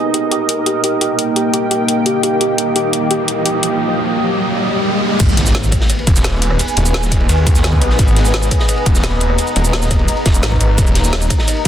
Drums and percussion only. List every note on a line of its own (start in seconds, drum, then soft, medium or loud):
0.14 closed hi-hat medium
0.31 closed hi-hat medium
0.49 closed hi-hat medium
0.66 closed hi-hat medium
0.84 closed hi-hat medium
1.01 closed hi-hat medium
1.19 closed hi-hat medium
1.36 closed hi-hat medium
1.54 closed hi-hat medium
1.71 closed hi-hat medium
1.88 closed hi-hat medium
2.06 closed hi-hat medium
2.23 closed hi-hat medium
2.41 closed hi-hat medium
2.58 closed hi-hat medium
2.76 closed hi-hat medium
2.93 closed hi-hat loud
3.11 closed hi-hat medium
3.28 closed hi-hat loud
3.46 closed hi-hat medium
3.63 closed hi-hat loud
5.20 kick loud
5.20 closed hi-hat medium
5.20 ride medium
5.20 crash loud
5.20 shaker soft
5.29 shaker soft
5.37 snare soft
5.37 closed hi-hat loud
5.37 ride medium
5.46 snare soft
5.46 shaker medium
5.55 snare loud
5.55 closed hi-hat medium
5.55 ride medium
5.63 shaker medium
5.72 kick medium
5.72 cross-stick soft
5.72 closed hi-hat loud
5.72 ride medium
5.72 shaker soft
5.80 snare medium
5.90 cross-stick soft
5.90 closed hi-hat medium
5.90 ride loud
5.90 shaker soft
5.99 ride soft
6.07 kick loud
6.07 closed hi-hat loud
6.07 ride medium
6.07 shaker soft
6.15 snare soft
6.15 shaker medium
6.24 snare loud
6.24 closed hi-hat medium
6.24 ride medium
6.24 shaker medium
6.42 closed hi-hat medium
6.42 ride medium
6.51 cross-stick soft
6.59 closed hi-hat medium
6.59 ride medium
6.59 shaker soft
6.68 ride soft
6.68 shaker soft
6.76 closed hi-hat medium
6.76 ride medium
6.86 shaker medium
6.94 snare loud
6.94 closed hi-hat medium
6.94 ride medium
7.03 snare soft
7.03 shaker medium
7.12 kick medium
7.12 closed hi-hat medium
7.12 ride medium
7.12 shaker soft
7.20 ride soft
7.29 closed hi-hat medium
7.29 ride loud
7.29 shaker soft
7.38 ride soft
7.47 kick loud
7.47 closed hi-hat loud
7.47 ride medium
7.47 shaker soft
7.55 snare soft
7.55 shaker medium
7.64 snare loud
7.64 closed hi-hat medium
7.64 ride medium
7.64 shaker soft
7.73 kick medium
7.81 cross-stick soft
7.81 closed hi-hat loud
7.81 ride medium
7.90 snare soft
7.99 kick loud
7.99 closed hi-hat medium
7.99 ride loud
7.99 shaker soft
8.08 shaker soft
8.16 snare medium
8.16 closed hi-hat medium
8.16 ride medium
8.25 snare soft
8.25 shaker medium
8.34 snare loud
8.34 closed hi-hat medium
8.34 ride medium
8.43 shaker medium
8.51 kick medium
8.51 cross-stick soft
8.51 closed hi-hat medium
8.51 ride medium
8.51 shaker soft
8.59 snare medium
8.68 cross-stick soft
8.68 closed hi-hat medium
8.68 ride loud
8.68 shaker soft
8.77 ride soft
8.86 kick loud
8.86 closed hi-hat loud
8.86 ride medium
8.86 shaker soft
8.95 snare medium
8.95 shaker medium
9.03 snare loud
9.03 closed hi-hat medium
9.03 ride medium
9.03 shaker soft
9.20 closed hi-hat medium
9.20 ride medium
9.30 cross-stick soft
9.38 closed hi-hat medium
9.38 ride medium
9.38 shaker soft
9.47 ride soft
9.47 shaker soft
9.56 closed hi-hat medium
9.56 ride medium
9.65 shaker medium
9.73 snare loud
9.73 closed hi-hat medium
9.73 ride medium
9.82 snare medium
9.82 shaker medium
9.91 kick medium
9.91 cross-stick soft
9.91 closed hi-hat medium
9.91 ride medium
9.91 shaker soft
9.99 ride soft
10.08 closed hi-hat medium
10.08 ride medium
10.08 shaker soft
10.17 ride soft
10.25 kick loud
10.25 snare loud
10.25 closed hi-hat medium
10.25 ride medium
10.25 shaker soft
10.34 shaker medium
10.43 snare loud
10.43 closed hi-hat medium
10.43 ride medium
10.43 shaker soft
10.52 kick medium
10.60 cross-stick soft
10.60 closed hi-hat medium
10.60 ride medium
10.60 shaker soft
10.78 kick loud
10.78 closed hi-hat medium
10.78 ride medium
10.78 shaker soft
10.87 shaker soft
10.95 snare medium
10.95 closed hi-hat medium
10.95 ride medium
11.04 snare soft
11.04 shaker medium
11.13 snare loud
11.13 closed hi-hat medium
11.13 ride medium
11.22 shaker medium
11.30 kick medium
11.30 cross-stick soft
11.30 closed hi-hat medium
11.30 ride medium
11.30 shaker soft
11.38 snare medium
11.48 cross-stick soft
11.48 closed hi-hat medium
11.48 ride loud
11.48 shaker medium
11.57 ride soft